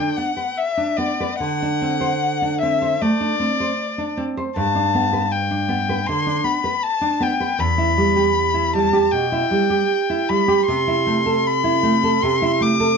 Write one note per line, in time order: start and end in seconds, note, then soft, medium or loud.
0.00 0.10 D3 soft
0.00 0.31 D4 soft
0.00 0.18 G5 soft
0.17 0.51 B3 soft
0.17 0.59 F#5 soft
0.37 1.04 B4 soft
0.58 0.98 E5 soft
0.77 1.12 D4 soft
0.97 1.33 B3 soft
0.97 1.40 D5 soft
1.20 1.42 B4 soft
1.40 2.96 D3 soft
1.40 2.58 F#5 soft
1.62 1.94 D4 soft
1.82 2.14 C4 soft
2.01 2.65 C5 soft
2.42 2.74 D4 soft
2.61 2.94 C4 soft
2.61 3.03 E5 soft
2.82 3.13 C5 soft
3.01 3.33 A3 soft
3.01 4.18 D5 soft
3.20 3.52 D4 soft
3.40 3.72 C4 soft
3.60 4.22 C5 soft
3.98 4.29 D4 soft
4.17 4.48 C4 soft
4.37 4.56 C5 soft
4.56 6.05 G2 soft
4.56 5.33 A5 medium
4.75 5.06 D4 soft
4.95 5.25 B3 soft
5.13 5.74 B4 soft
5.32 6.08 G5 soft
5.51 5.82 D4 soft
5.68 6.00 B3 soft
5.89 6.20 B4 soft
6.07 6.39 D3 soft
6.07 6.46 C6 medium
6.26 6.57 D4 soft
6.44 6.75 B3 soft
6.44 6.84 B5 soft
6.64 7.26 B4 soft
6.83 7.24 A5 medium
7.01 7.33 D4 soft
7.20 7.52 B3 soft
7.20 7.61 G5 soft
7.40 7.60 B4 soft
7.59 9.08 E2 soft
7.59 8.75 B5 medium
7.78 8.09 E4 soft
7.97 8.29 G3 soft
8.16 8.78 G4 soft
8.54 8.86 E4 soft
8.74 9.06 G3 soft
8.74 9.14 A5 medium
8.93 9.24 G4 soft
9.12 9.44 B2 soft
9.12 10.30 G5 medium
9.32 9.63 E4 soft
9.51 9.82 G3 soft
9.70 10.33 G4 soft
10.10 10.41 E4 soft
10.29 10.60 G3 soft
10.29 10.65 B5 medium
10.48 10.68 G4 soft
10.66 12.18 C3 medium
10.66 11.48 C6 medium
10.88 11.18 E4 soft
11.07 11.38 A3 soft
11.26 11.88 A4 soft
11.46 12.24 B5 medium
11.64 11.95 E4 soft
11.83 12.14 A3 soft
12.03 12.34 A4 soft
12.22 12.97 C3 soft
12.22 12.64 C6 medium
12.42 12.72 E4 soft
12.61 12.91 A3 soft
12.61 12.97 D6 medium
12.80 12.97 A4 soft